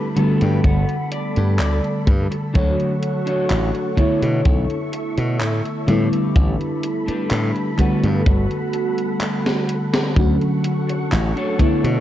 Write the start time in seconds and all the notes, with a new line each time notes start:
Already playing: D3 G3 A3 B3 E4 A4 B5
0.16 D3 G3 A3 B3 F#4 A4 A5, closed hi-hat
0.41 G2 G5, closed hi-hat
0.64 G1 F#5, kick, closed hi-hat
0.89 closed hi-hat
1.11 D5, muted clean electric guitar stroke, closed hi-hat
1.36 G2, closed hi-hat
1.59 D2 D5, clap, closed hi-hat
1.84 closed hi-hat
2.06 G2, muted clean electric guitar stroke, kick, closed hi-hat
2.31 muted clean electric guitar stroke, closed hi-hat
2.54 D2 D3 F#3 A3 D4 F#4 C#5 F#5 C#6, kick, closed hi-hat
2.80 closed hi-hat
3.03 closed hi-hat
3.26 D4 F#4 C#5, closed hi-hat
3.50 A1, clap, closed hi-hat
3.75 closed hi-hat
3.97 D3 A3 B3 D4 E4 A4 C#5 E5 C#6, kick, closed hi-hat
4.22 B2, closed hi-hat
4.45 B1, kick, closed hi-hat
4.70 closed hi-hat
4.92 muted clean electric guitar stroke, closed hi-hat
5.18 B2, closed hi-hat
5.41 A2, clap, closed hi-hat
5.65 closed hi-hat
5.87 A2 D3 G3 A3 B3 D4 E4 G4 A4 B4 B5, closed hi-hat
6.13 closed hi-hat
6.36 A1, kick, closed hi-hat
6.61 closed hi-hat
6.83 closed hi-hat
7.07 D4 G4 B4, muted slap bass stroke, closed hi-hat
7.31 A2, clap, closed hi-hat
7.56 closed hi-hat
7.78 D3 G3 A3 B3 F#4 A4 B4 F#5, kick, clap, closed hi-hat
8.04 G2, closed hi-hat
8.26 G1, kick, closed hi-hat
8.51 closed hi-hat
8.73 muted clean electric guitar stroke, closed hi-hat
8.98 closed hi-hat
9.21 clap, closed hi-hat
9.46 snare, closed hi-hat
9.68 muted clean electric guitar stroke, closed hi-hat
9.93 muted clean electric guitar stroke, snare, closed hi-hat
10.16 D2 D3 F#3 A3 C#4 F#4 A4 F#5 C#6, kick, closed hi-hat
10.41 closed hi-hat
10.64 closed hi-hat
10.88 muted clean electric guitar stroke, closed hi-hat
11.11 A1, muted clean electric guitar stroke, clap, closed hi-hat
11.36 D4 F#4 A4 C#5, closed hi-hat
11.59 D3 A3 B3 D4 E4 A4 C#5 E5, kick, closed hi-hat
11.84 B2, closed hi-hat